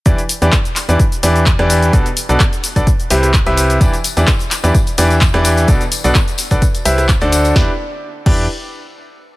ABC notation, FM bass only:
X:1
M:4/4
L:1/16
Q:"Swing 16ths" 1/4=128
K:Em
V:1 name="FM bass" clef=bass
E,, z2 E,, z3 E,, z2 E,,3 E,,3 | B,,, z2 B,,, z3 B,,, z2 C,,3 C,,3 | E,, z2 E,, z3 E,, z2 E,,3 E,,3 | B,,, z2 B,,, z3 B,,, z2 C,,3 D,,3 |
E,, z4 z E,,2 z8 |]